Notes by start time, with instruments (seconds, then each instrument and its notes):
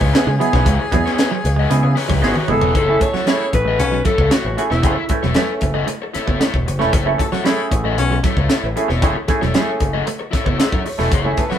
Already playing: baritone saxophone G#4
0.01 picked electric bass C#2, clean electric guitar G#3, overdriven electric guitar E4 B4 C#5, kick
0.13 clav B3 D#4 E4 G#4, overdriven electric guitar E4 B4 C#5, muted clean electric guitar stroke, snare, closed hi-hat
0.27 picked electric bass C#3, clean electric guitar G#3
0.39 clean electric guitar F#3, clav B3 D#4 E4 G#4, muted overdriven electric guitar stroke, closed hi-hat
0.53 picked electric bass B1, overdriven electric guitar E4 B4 C#5, kick, snare
0.66 picked electric bass C#2, clean electric guitar G#3, overdriven electric guitar E4 B4 C#5, kick, closed hi-hat
0.80 muted overdriven electric guitar stroke
0.91 picked electric bass E2, clean electric guitar F#3, clav B3 D#4 E4 G#4, muted overdriven electric guitar stroke, kick, closed hi-hat
1.05 overdriven electric guitar E4 B4 C#5, muted clean electric guitar stroke, snare
1.18 overdriven electric guitar E4 B4 C#5, snare, closed hi-hat
1.31 clean electric guitar F#3
1.44 picked electric bass C#2, muted clean electric guitar stroke, muted overdriven electric guitar stroke, closed hi-hat
1.56 clean electric guitar G#3, overdriven electric guitar B4 D#5
1.61 overdriven electric guitar E4
1.70 picked electric bass C#3, clean electric guitar G#3, clav B3 D#4 E4 G#4, muted overdriven electric guitar stroke, closed hi-hat
1.83 picked electric bass C#3, muted overdriven electric guitar stroke
1.96 overdriven electric guitar E4 B4 C#5, muted clean electric guitar stroke, snare, open hi-hat
2.08 picked electric bass C#2, clean electric guitar F#3, overdriven electric guitar E4 B4 C#5, kick
2.22 picked electric bass G#1, clav B3 D#4 E4 G#4, overdriven electric guitar E4 B4 C#5, muted clean electric guitar stroke, snare
2.26 alto saxophone F#4
2.36 high tom
2.48 picked electric bass F#1, clean electric guitar G#3, clav B3 D#4 E4 G#4, alto saxophone A4, muted overdriven electric guitar stroke, mid tom
2.61 picked electric bass E1, clean electric guitar F#3, overdriven electric guitar E4 B4 C#5, floor tom
2.75 picked electric bass F#1, overdriven electric guitar E4 A4 C#5, alto saxophone A4, kick, closed hi-hat
2.87 clav A3 C#4 E4 G#4, muted clean electric guitar stroke, muted overdriven electric guitar stroke
3.00 clean electric guitar A3, baritone saxophone A4, alto saxophone C#5, muted overdriven electric guitar stroke, kick, closed hi-hat
3.13 clean electric guitar F#3, overdriven electric guitar E4 A4 C#5, baritone saxophone F#4, muted picked electric bass stroke, snare
3.26 clean electric guitar F#3, clav A3 C#4 E4 G#4, overdriven electric guitar E4 A4 C#5, baritone saxophone E4, snare, closed hi-hat
3.53 picked electric bass A1, alto saxophone B4, muted clean electric guitar stroke, muted overdriven electric guitar stroke, kick, closed hi-hat
3.65 clean electric guitar A3, overdriven electric guitar E4 A4 D#5
3.78 picked electric bass B1, baritone saxophone C#4, muted clean electric guitar stroke, muted overdriven electric guitar stroke, closed hi-hat
3.92 clean electric guitar F#3, muted overdriven electric guitar stroke
4.05 clean electric guitar F#3, overdriven electric guitar E4 A4 C#5, alto saxophone A4, kick, closed hi-hat
4.18 picked electric bass C#2, overdriven electric guitar E4 A4 C#5, kick
4.30 clean electric guitar A3, overdriven electric guitar E4 A4 C#5, alto saxophone F#4, muted picked electric bass stroke, snare, closed hi-hat
4.44 picked electric bass A1, clav E4 G#4
4.57 clav A3 C#4 E4 G#4, alto saxophone F#4, muted clean electric guitar stroke, muted overdriven electric guitar stroke, closed hi-hat
4.70 picked electric bass E1, clean electric guitar B3, alto saxophone E4, overdriven electric guitar E4 A4 C#5, snare
4.83 picked electric bass F#1, clav A3 C#4 E4 G#4, overdriven electric guitar E4 A4 C#5, kick, closed hi-hat
4.96 muted overdriven electric guitar stroke, muted clean electric guitar stroke
5.09 clav A3 C#4 E4 B4, clean electric guitar A3, muted overdriven electric guitar stroke, kick, closed hi-hat
5.23 picked electric bass E1, clean electric guitar F#3, overdriven electric guitar E4 A4 C#5, snare
5.34 clean electric guitar F#3, clav A3 C#4 E4 B4, overdriven electric guitar E4 A4 C#5, snare, closed hi-hat
5.61 picked electric bass F#1, muted clean electric guitar stroke, muted overdriven electric guitar stroke, kick, closed hi-hat
5.74 clean electric guitar A3, overdriven electric guitar E4 A4 D#5
5.87 clean electric guitar A3, muted overdriven electric guitar stroke, closed hi-hat
6.02 muted overdriven electric guitar stroke
6.14 overdriven electric guitar E4 A4 C#5, muted clean electric guitar stroke, muted picked electric bass stroke, snare, closed hi-hat
6.27 picked electric bass F#1, clean electric guitar B3, overdriven electric guitar E4 A4 C#5, kick
6.40 clean electric guitar A3, overdriven electric guitar E4 A4 C#5, snare, closed hi-hat
6.54 picked electric bass E1, kick
6.66 picked electric bass F#1, muted clean electric guitar stroke, muted overdriven electric guitar stroke, closed hi-hat
6.79 picked electric bass E1, clean electric guitar A3, clav A3 C#4 E4 B4, overdriven electric guitar E4 A4 C#5, snare
6.92 picked electric bass F#1, overdriven electric guitar E4 A4 C#5, kick, closed hi-hat
7.06 clav A3 C#4 E4 A4, muted clean electric guitar stroke, muted overdriven electric guitar stroke
7.18 clean electric guitar A3, baritone saxophone A4, muted overdriven electric guitar stroke, kick, closed hi-hat
7.32 clean electric guitar F#3, overdriven electric guitar E4 A4 C#5, baritone saxophone F#4, muted picked electric bass stroke, snare
7.44 clean electric guitar F#3, clav A3 C#4 E4 G#4, baritone saxophone E4, overdriven electric guitar E4 A4 C#5, snare, closed hi-hat
7.71 picked electric bass A1, muted clean electric guitar stroke, muted overdriven electric guitar stroke, kick, closed hi-hat
7.84 clean electric guitar A3, overdriven electric guitar E4 A4 D#5
7.98 picked electric bass B1, baritone saxophone C#4, muted clean electric guitar stroke, muted overdriven electric guitar stroke, closed hi-hat
8.11 clean electric guitar F#3, muted overdriven electric guitar stroke
8.23 clean electric guitar F#3, overdriven electric guitar E4 A4 C#5, kick, snare, closed hi-hat
8.37 picked electric bass C#2, overdriven electric guitar E4 A4 C#5, kick
8.49 clean electric guitar A3, overdriven electric guitar E4 A4 C#5, muted picked electric bass stroke, snare, closed hi-hat
8.63 picked electric bass A1, clav E4 B4
8.76 clav A3 C#4 E4 G#4, muted clean electric guitar stroke, muted overdriven electric guitar stroke, closed hi-hat
8.88 picked electric bass E1, clean electric guitar B3, overdriven electric guitar E4 A4 C#5, snare
9.02 picked electric bass F#1, clav A3 C#4 E4 G#4, overdriven electric guitar E4 A4 C#5, kick, closed hi-hat
9.14 muted clean electric guitar stroke, muted overdriven electric guitar stroke
9.28 clav A3 C#4 E4 G#4, clean electric guitar A3, muted overdriven electric guitar stroke, kick, closed hi-hat
9.41 picked electric bass E1, clean electric guitar F#3, overdriven electric guitar E4 A4 C#5, snare
9.54 clean electric guitar F#3, clav G#3 C#4 E4 G#4, overdriven electric guitar E4 A4 C#5, snare, closed hi-hat
9.61 clav A3
9.80 picked electric bass F#1, muted overdriven electric guitar stroke, muted clean electric guitar stroke, kick, closed hi-hat
9.94 clean electric guitar A3, overdriven electric guitar E4 A4 D#5
10.06 clean electric guitar A3, muted overdriven electric guitar stroke, closed hi-hat
10.19 muted overdriven electric guitar stroke
10.31 overdriven electric guitar E4 A4 C#5, muted clean electric guitar stroke, muted picked electric bass stroke, kick, snare, closed hi-hat
10.45 picked electric bass F#1, clean electric guitar B3, overdriven electric guitar E4 A4 C#5, kick
10.59 clean electric guitar A3, overdriven electric guitar E4 A4 C#5, alto saxophone E5, snare, closed hi-hat
10.72 picked electric bass F#2, kick
10.85 alto saxophone C#5, muted overdriven electric guitar stroke, muted clean electric guitar stroke, open hi-hat
10.98 picked electric bass E1, clav A3 C#4 E4 B4, clean electric guitar A3, overdriven electric guitar E4 A4 C#5, snare
11.12 picked electric bass F#1, overdriven electric guitar E4 A4 C#5, kick, closed hi-hat
11.25 clav A3 C#4 E4 G#4, muted overdriven electric guitar stroke, muted clean electric guitar stroke
11.37 clean electric guitar A3, baritone saxophone A4, alto saxophone B4, muted overdriven electric guitar stroke, kick, closed hi-hat
11.50 clean electric guitar F#3, overdriven electric guitar E4 A4 C#5, baritone saxophone F#4, muted picked electric bass stroke, snare